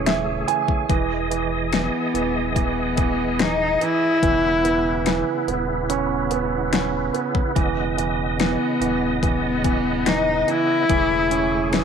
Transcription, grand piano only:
0, 0, Header, 1, 2, 480
1, 0, Start_track
1, 0, Tempo, 833333
1, 516, Time_signature, 4, 2, 24, 8
1, 6820, End_track
2, 0, Start_track
2, 0, Title_t, "Grand piano"
2, 0, Program_c, 0, 0
2, 0, Control_c, 0, 64, 127
2, 0, Note_on_c, 0, 52, 53
2, 0, Note_on_c, 0, 73, 66
2, 35, Note_off_c, 0, 52, 0
2, 35, Note_on_c, 0, 52, 47
2, 37, Note_on_c, 0, 76, 62
2, 259, Note_off_c, 0, 76, 0
2, 265, Note_off_c, 0, 52, 0
2, 274, Note_on_c, 0, 52, 50
2, 275, Note_on_c, 0, 80, 63
2, 499, Note_off_c, 0, 80, 0
2, 505, Note_off_c, 0, 52, 0
2, 514, Note_on_c, 0, 52, 62
2, 523, Control_c, 0, 64, 0
2, 526, Note_off_c, 0, 73, 0
2, 619, Control_c, 0, 64, 127
2, 743, Note_off_c, 0, 52, 0
2, 752, Note_on_c, 0, 52, 51
2, 984, Note_off_c, 0, 52, 0
2, 992, Note_on_c, 0, 52, 52
2, 1224, Note_off_c, 0, 52, 0
2, 1232, Note_on_c, 0, 52, 55
2, 1461, Note_off_c, 0, 52, 0
2, 1469, Note_on_c, 0, 52, 51
2, 1702, Note_off_c, 0, 52, 0
2, 1710, Note_on_c, 0, 52, 57
2, 1944, Note_off_c, 0, 52, 0
2, 1953, Note_on_c, 0, 52, 48
2, 2185, Note_off_c, 0, 52, 0
2, 2193, Note_on_c, 0, 52, 58
2, 2427, Note_off_c, 0, 52, 0
2, 2436, Note_on_c, 0, 52, 66
2, 2444, Control_c, 0, 64, 0
2, 2535, Control_c, 0, 64, 127
2, 2675, Note_on_c, 0, 59, 52
2, 2909, Note_off_c, 0, 52, 0
2, 2918, Note_on_c, 0, 52, 57
2, 3149, Note_off_c, 0, 59, 0
2, 3157, Note_on_c, 0, 59, 51
2, 3397, Note_on_c, 0, 61, 55
2, 3628, Note_off_c, 0, 59, 0
2, 3637, Note_on_c, 0, 59, 60
2, 3854, Note_off_c, 0, 52, 0
2, 3864, Note_off_c, 0, 61, 0
2, 3873, Note_on_c, 0, 61, 52
2, 4105, Note_off_c, 0, 59, 0
2, 4113, Note_on_c, 0, 59, 55
2, 4340, Note_off_c, 0, 61, 0
2, 4347, Note_off_c, 0, 59, 0
2, 4352, Note_on_c, 0, 52, 66
2, 4363, Control_c, 0, 64, 0
2, 4446, Control_c, 0, 64, 127
2, 4584, Note_off_c, 0, 52, 0
2, 4593, Note_on_c, 0, 52, 57
2, 4829, Note_off_c, 0, 52, 0
2, 4837, Note_on_c, 0, 52, 57
2, 5065, Note_off_c, 0, 52, 0
2, 5074, Note_on_c, 0, 52, 57
2, 5307, Note_off_c, 0, 52, 0
2, 5316, Note_on_c, 0, 52, 57
2, 5544, Note_off_c, 0, 52, 0
2, 5553, Note_on_c, 0, 52, 61
2, 5787, Note_off_c, 0, 52, 0
2, 5796, Note_on_c, 0, 52, 52
2, 6025, Note_off_c, 0, 52, 0
2, 6034, Note_on_c, 0, 52, 54
2, 6267, Note_off_c, 0, 52, 0
2, 6276, Note_on_c, 0, 52, 68
2, 6284, Control_c, 0, 64, 0
2, 6376, Control_c, 0, 64, 127
2, 6516, Note_on_c, 0, 61, 55
2, 6749, Note_off_c, 0, 52, 0
2, 6757, Note_on_c, 0, 52, 55
2, 6820, Note_off_c, 0, 52, 0
2, 6820, Note_off_c, 0, 61, 0
2, 6820, End_track
0, 0, End_of_file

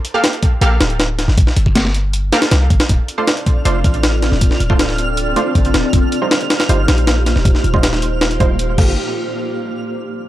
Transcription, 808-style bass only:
0, 0, Header, 1, 2, 480
1, 0, Start_track
1, 0, Tempo, 379747
1, 1738, Time_signature, 4, 2, 24, 8
1, 13000, End_track
2, 0, Start_track
2, 0, Title_t, "808-style bass"
2, 0, Program_c, 0, 38
2, 775, Note_on_c, 0, 34, 93
2, 993, Note_off_c, 0, 34, 0
2, 1021, Note_on_c, 0, 26, 82
2, 1600, Note_off_c, 0, 26, 0
2, 1619, Note_on_c, 0, 31, 96
2, 1726, Note_off_c, 0, 31, 0
2, 1739, Note_on_c, 0, 31, 93
2, 1847, Note_off_c, 0, 31, 0
2, 1979, Note_on_c, 0, 31, 103
2, 2919, Note_off_c, 0, 31, 0
2, 3178, Note_on_c, 0, 36, 102
2, 3394, Note_off_c, 0, 36, 0
2, 3418, Note_on_c, 0, 31, 84
2, 3526, Note_off_c, 0, 31, 0
2, 3659, Note_on_c, 0, 26, 93
2, 3766, Note_off_c, 0, 26, 0
2, 4617, Note_on_c, 0, 29, 89
2, 4833, Note_off_c, 0, 29, 0
2, 4857, Note_on_c, 0, 33, 78
2, 5439, Note_off_c, 0, 33, 0
2, 5459, Note_on_c, 0, 26, 90
2, 5567, Note_off_c, 0, 26, 0
2, 5579, Note_on_c, 0, 26, 95
2, 5686, Note_off_c, 0, 26, 0
2, 5816, Note_on_c, 0, 26, 103
2, 6758, Note_off_c, 0, 26, 0
2, 7017, Note_on_c, 0, 31, 100
2, 7234, Note_off_c, 0, 31, 0
2, 7260, Note_on_c, 0, 26, 79
2, 7367, Note_off_c, 0, 26, 0
2, 7498, Note_on_c, 0, 27, 96
2, 7606, Note_off_c, 0, 27, 0
2, 8458, Note_on_c, 0, 31, 89
2, 8674, Note_off_c, 0, 31, 0
2, 8700, Note_on_c, 0, 34, 78
2, 9280, Note_off_c, 0, 34, 0
2, 9300, Note_on_c, 0, 27, 89
2, 9407, Note_off_c, 0, 27, 0
2, 9418, Note_on_c, 0, 27, 95
2, 9526, Note_off_c, 0, 27, 0
2, 9658, Note_on_c, 0, 27, 104
2, 10599, Note_off_c, 0, 27, 0
2, 10620, Note_on_c, 0, 27, 105
2, 11091, Note_off_c, 0, 27, 0
2, 11098, Note_on_c, 0, 31, 96
2, 11321, Note_off_c, 0, 31, 0
2, 13000, End_track
0, 0, End_of_file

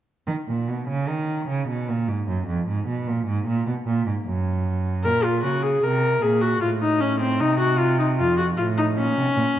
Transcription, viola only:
0, 0, Header, 1, 2, 480
1, 0, Start_track
1, 0, Key_signature, -6, "minor"
1, 0, Tempo, 797872
1, 167, Time_signature, 3, 2, 24, 8
1, 2085, Tempo, 786370
1, 5826, End_track
2, 0, Start_track
2, 0, Title_t, "Viola"
2, 0, Program_c, 0, 41
2, 3044, Note_on_c, 0, 70, 85
2, 3167, Note_on_c, 0, 65, 82
2, 3176, Note_off_c, 0, 70, 0
2, 3282, Note_off_c, 0, 65, 0
2, 3286, Note_on_c, 0, 66, 83
2, 3404, Note_on_c, 0, 68, 76
2, 3413, Note_off_c, 0, 66, 0
2, 3529, Note_on_c, 0, 70, 87
2, 3538, Note_off_c, 0, 68, 0
2, 3763, Note_on_c, 0, 68, 76
2, 3773, Note_off_c, 0, 70, 0
2, 3883, Note_on_c, 0, 66, 82
2, 3892, Note_off_c, 0, 68, 0
2, 4001, Note_off_c, 0, 66, 0
2, 4004, Note_on_c, 0, 65, 81
2, 4052, Note_off_c, 0, 65, 0
2, 4127, Note_on_c, 0, 63, 80
2, 4244, Note_on_c, 0, 61, 87
2, 4253, Note_off_c, 0, 63, 0
2, 4361, Note_off_c, 0, 61, 0
2, 4365, Note_on_c, 0, 60, 88
2, 4487, Note_on_c, 0, 63, 91
2, 4496, Note_off_c, 0, 60, 0
2, 4601, Note_off_c, 0, 63, 0
2, 4605, Note_on_c, 0, 66, 86
2, 4723, Note_on_c, 0, 65, 83
2, 4732, Note_off_c, 0, 66, 0
2, 4842, Note_off_c, 0, 65, 0
2, 4846, Note_on_c, 0, 63, 75
2, 4894, Note_off_c, 0, 63, 0
2, 4965, Note_on_c, 0, 65, 88
2, 5080, Note_off_c, 0, 65, 0
2, 5084, Note_on_c, 0, 66, 79
2, 5132, Note_off_c, 0, 66, 0
2, 5202, Note_on_c, 0, 65, 85
2, 5250, Note_off_c, 0, 65, 0
2, 5326, Note_on_c, 0, 63, 89
2, 5374, Note_off_c, 0, 63, 0
2, 5447, Note_on_c, 0, 61, 94
2, 5826, Note_off_c, 0, 61, 0
2, 5826, End_track
0, 0, End_of_file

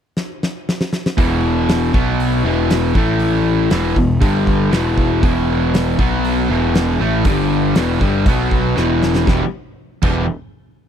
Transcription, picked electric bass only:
0, 0, Header, 1, 2, 480
1, 0, Start_track
1, 0, Key_signature, 1, "minor"
1, 0, Tempo, 506329
1, 1116, Time_signature, 4, 2, 24, 8
1, 10321, End_track
2, 0, Start_track
2, 0, Title_t, "Picked electric bass"
2, 0, Program_c, 0, 34
2, 1119, Note_on_c, 0, 28, 87
2, 1802, Note_off_c, 0, 28, 0
2, 1839, Note_on_c, 0, 35, 83
2, 2286, Note_off_c, 0, 35, 0
2, 2317, Note_on_c, 0, 28, 83
2, 2765, Note_off_c, 0, 28, 0
2, 2797, Note_on_c, 0, 33, 96
2, 3482, Note_off_c, 0, 33, 0
2, 3521, Note_on_c, 0, 28, 94
2, 3745, Note_off_c, 0, 28, 0
2, 3758, Note_on_c, 0, 28, 77
2, 3983, Note_off_c, 0, 28, 0
2, 3995, Note_on_c, 0, 31, 97
2, 4444, Note_off_c, 0, 31, 0
2, 4478, Note_on_c, 0, 28, 96
2, 4926, Note_off_c, 0, 28, 0
2, 4955, Note_on_c, 0, 28, 92
2, 5639, Note_off_c, 0, 28, 0
2, 5681, Note_on_c, 0, 35, 89
2, 6126, Note_off_c, 0, 35, 0
2, 6157, Note_on_c, 0, 28, 86
2, 6603, Note_off_c, 0, 28, 0
2, 6636, Note_on_c, 0, 33, 97
2, 6860, Note_off_c, 0, 33, 0
2, 6876, Note_on_c, 0, 31, 93
2, 7322, Note_off_c, 0, 31, 0
2, 7354, Note_on_c, 0, 28, 89
2, 7578, Note_off_c, 0, 28, 0
2, 7595, Note_on_c, 0, 31, 94
2, 7818, Note_off_c, 0, 31, 0
2, 7827, Note_on_c, 0, 35, 89
2, 8276, Note_off_c, 0, 35, 0
2, 8313, Note_on_c, 0, 28, 97
2, 8759, Note_off_c, 0, 28, 0
2, 8792, Note_on_c, 0, 28, 91
2, 8926, Note_off_c, 0, 28, 0
2, 9506, Note_on_c, 0, 28, 91
2, 9731, Note_off_c, 0, 28, 0
2, 10321, End_track
0, 0, End_of_file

